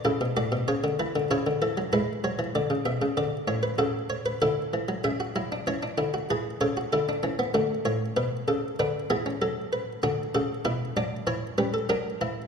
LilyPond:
<<
  \new Staff \with { instrumentName = "Harpsichord" } { \time 4/4 \key a \mixolydian \tempo 4 = 96 << { a'8 d''8 cis''8 b'8 cis''8 a'8 b'8 cis''8 | d''8 e''8 d''8 cis''16 b'16 a'8 cis''16 b'16 a'4 | e''4 cis''4 b'8 cis''8 a'4 | fis'8 cis''8 b'8 a'8 b'8 gis'8 a'8 b'8 |
\key b \minor fis'8 a'8 b'8 d''8 cis''8 b'16 a'16 ais'4 | } \\ { e'8 fis'4. e'4 e'4~ | e'2 fis'4 e'4 | gis'16 fis'16 e'16 d'16 cis'16 d'16 e'16 fis'16 gis'8 a'16 fis'16 e'16 d'16 cis'16 b16 | a2 d'8 b16 cis'4~ cis'16 |
d'8 fis'8 e'8 d'8 e'8 cis'8 d'8 e'8 | } >> }
  \new Staff \with { instrumentName = "Harpsichord" } { \clef bass \time 4/4 \key a \mixolydian cis16 b,16 a,16 b,16 cis16 d16 e16 d16 cis16 d16 e16 fis16 gis8 fis16 e16 | d16 cis16 b,16 cis16 d8 a,8 cis4 d8 e16 fis16 | cis8 fis8 e8 d8 e8 cis8 d8 e8 | d8 a,8 b,8 cis8 d8 e8 fis4 |
\key b \minor d8 cis8 b,8 fis8 e8 g8 fis8 e8 | }
>>